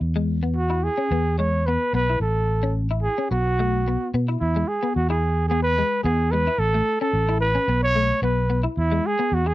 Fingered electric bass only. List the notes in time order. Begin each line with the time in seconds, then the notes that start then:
0.01 E2
1.11 E2
1.93 B1
2.20 A1
3.31 B1
4.14 B2
4.41 E2
4.96 E2
6.04 E2
6.58 A1
7.13 A1
7.68 B1
8.22 B1
8.77 E2
9.32 E2